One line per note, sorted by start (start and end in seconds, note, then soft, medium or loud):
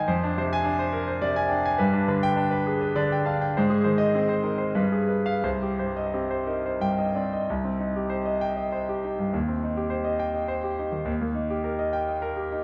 0.00 0.11 G#2 medium
0.00 0.11 D#3 medium
0.00 0.11 D#4 medium
0.00 0.11 A#4 medium
0.00 0.08 C5 medium
0.00 0.10 D#5 medium
0.00 0.11 G5 medium
0.00 0.11 G#5 medium
0.08 1.77 F2 medium
0.08 0.31 C5 medium
0.23 0.46 D4 medium
0.38 0.83 C3 medium
0.38 0.61 C5 medium
0.53 0.75 G#5 medium
0.64 0.88 D4 medium
0.79 1.03 C5 medium
0.93 1.08 A#4 medium
1.07 1.31 C5 medium
1.21 1.69 C3 medium
1.21 1.46 D5 medium
1.36 1.60 G#5 medium
1.49 1.80 D4 medium
1.49 1.65 G5 medium
1.65 1.81 G#5 medium
1.78 3.53 G2 medium
1.78 2.03 B4 medium
1.93 2.18 D4 medium
2.08 2.57 D3 medium
2.08 2.33 B4 medium
2.23 2.48 G5 loud
2.37 2.85 D4 medium
2.51 2.76 B4 medium
2.66 2.83 G#4 medium
2.81 3.06 B4 medium
2.96 3.44 D3 medium
2.96 3.21 D5 medium
3.12 3.36 G5 medium
3.25 3.56 D4 medium
3.25 3.42 F5 medium
3.41 3.57 G5 medium
3.57 4.75 G#2 medium
3.57 3.81 C5 medium
3.70 3.95 G#4 medium
3.84 4.33 D#3 medium
3.84 4.09 C5 medium
3.98 4.24 D#5 medium
4.15 4.65 C4 medium
4.15 4.40 G#4 medium
4.29 4.55 C5 medium
4.43 4.77 D#4 medium
4.43 4.61 A#4 medium
4.58 4.76 C5 medium
4.75 5.42 G2 medium
4.75 5.03 B4 medium
4.92 5.21 G#4 medium
5.09 5.38 B4 medium
5.26 5.44 F5 medium
5.43 7.44 C2 medium
5.43 5.72 C5 medium
5.62 5.90 G4 medium
5.79 6.35 G2 soft
5.79 6.07 C5 medium
5.96 6.24 D#5 medium
6.14 6.69 C4 medium
6.14 6.42 G4 medium
6.30 6.59 C5 medium
6.46 7.02 D#4 medium
6.46 6.65 A#4 soft
6.66 6.93 C5 medium
6.81 7.36 G2 medium
6.81 7.09 G5 medium
6.98 7.26 D#5 medium
7.15 7.49 C4 soft
7.15 7.32 D5 soft
7.33 7.49 D#5 medium
7.50 9.30 C2 medium
7.64 7.89 C4 medium
7.79 8.05 D#4 medium
7.96 8.21 G4 medium
8.10 8.36 C5 medium
8.25 8.51 D#5 medium
8.41 8.67 G5 medium
8.57 8.82 D#5 medium
8.72 8.97 C5 medium
8.89 9.13 G4 medium
9.04 9.28 D#4 medium
9.19 9.33 G2 medium
9.33 11.04 D#2 medium
9.48 9.71 C4 medium
9.63 9.86 D#4 medium
9.77 10.00 G4 medium
9.90 10.14 C5 medium
10.05 10.29 D#5 medium
10.19 10.44 G5 medium
10.35 10.59 D#5 medium
10.48 10.73 C5 medium
10.64 10.88 G4 medium
10.79 11.02 D#4 medium
10.92 11.07 D#3 medium
11.05 12.64 D#2 medium
11.21 11.45 A#3 medium
11.34 11.59 D#4 medium
11.50 11.74 G4 medium
11.64 11.88 A#4 medium
11.79 12.02 D#5 medium
11.93 12.17 G5 medium
12.09 12.31 D#5 medium
12.22 12.45 A#4 medium
12.37 12.60 G4 medium
12.52 12.64 D#4 medium